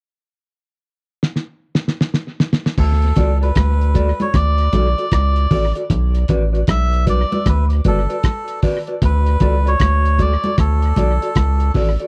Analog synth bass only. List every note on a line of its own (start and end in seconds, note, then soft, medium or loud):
2.78 3.13 D2 loud
3.17 3.52 C#2 medium
3.56 4.13 D2 medium
4.34 4.69 D2 medium
4.73 4.95 B1 medium
5.12 5.47 C#2 medium
5.51 5.73 A1 medium
5.90 6.25 B1 loud
6.29 6.64 A1 medium
6.68 7.25 B1 loud
7.46 7.81 D2 medium
7.85 8.07 G1 medium
9.02 9.37 D2 loud
9.41 9.76 C#2 medium
9.80 10.37 D2 medium
10.58 10.93 D2 medium
10.97 11.19 B1 medium
11.36 11.71 C#2 medium
11.75 11.97 A1 medium